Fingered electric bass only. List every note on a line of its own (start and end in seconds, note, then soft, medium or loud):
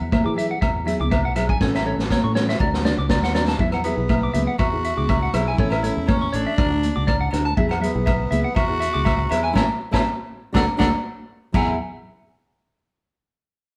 0.01 0.22 E2 medium
0.26 0.56 E3 medium
0.62 0.94 E2 loud
1.00 1.25 C#2 medium
1.25 1.56 B1 medium
1.61 1.93 A1 medium
1.98 2.20 A1 medium
2.24 2.55 A2 medium
2.60 2.92 D2 loud
2.98 3.23 C#2 medium
3.23 3.54 D#2 medium
3.59 3.92 E2 medium
3.97 4.28 B1 medium
4.34 4.45 C#2 medium
4.59 4.91 E2 medium
4.98 5.28 C#2 medium
5.34 5.55 B1 medium
5.58 5.90 A1 medium
5.97 6.28 E2 medium
6.34 6.45 A1 medium
6.58 6.90 D2 loud
6.97 7.27 C#2 medium
7.33 7.54 D2 medium
7.57 7.89 E2 medium
7.95 8.26 B1 loud
8.31 8.43 C#2 medium
8.56 8.88 E2 loud
8.95 9.26 C#2 medium
9.31 9.52 E2 medium
9.55 9.65 A1 loud
9.93 10.02 A1 loud
10.55 10.65 D2 loud
10.80 10.90 D2 medium
11.54 11.77 E2 medium